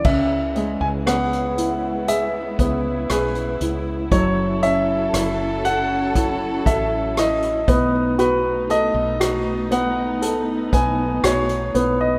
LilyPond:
<<
  \new Staff \with { instrumentName = "Grand piano" } { \time 4/4 \key cis \phrygian \tempo 4 = 59 e''8. gis''16 fis''4 e''4 b'8. r16 | cis''8 e''4 fis''4 e''8 dis''8. r16 | b'8 dis''4 fis''4 gis''8 cis''8. dis''16 | }
  \new Staff \with { instrumentName = "Upright piano" } { \time 4/4 \key cis \phrygian cis8 gis8 b8 e'8 gis'8 b8 gis'8 e'8 | fis8 cis'8 e'8 a'8 e'8 a'8 e'8 b8 | fis'8 a'8 fis'8 b8 a'8 b8 fis'8 b8 | }
  \new Staff \with { instrumentName = "String section" } { \time 4/4 \key cis \phrygian <cis gis b e'>1 | <fis cis' a'>2.~ <fis cis' a'>8 <a b dis'>8~ | <a b dis'>1 | }
  \new Staff \with { instrumentName = "Fretless electric bass" } { \clef bass \time 4/4 \key cis \phrygian cis,8. cis,4.~ cis,16 cis,8 b,,8 cis,8 | fis,,4 fis,,4. a,,4 b,,8~ | b,,8. b,,4.~ b,,16 b,,8 b,,8 b,,8 | }
  \new DrumStaff \with { instrumentName = "Drums" } \drummode { \time 4/4 <cymc bd>8 hh8 <hh ss>16 hh16 hh8 hh8 <hh bd>8 <hh ss>16 hh16 hh8 | <hh bd>8 hh8 <hh ss>8 hh8 <hh bd>8 <hh bd>8 <hh ss>16 hh16 <hh bd>8 | hh8 hh8 <hh ss>8 hh8 hh8 <hh bd>8 <hh ss>16 hh16 hh8 | }
>>